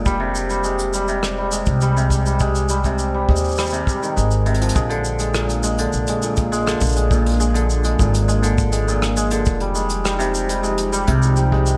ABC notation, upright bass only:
X:1
M:4/4
L:1/16
Q:1/4=102
K:Bbmix
V:1 name="Upright bass" clef=bass
F,,,8- F,,,3 C,,4- C,,- | C,,6 E,,4 z2 A,,,4 | B,,,8 B,,,6 B,,,2- | B,,,6 A,,,8- A,,,2 |
F,,,8- F,,,3 C,,4- C,, |]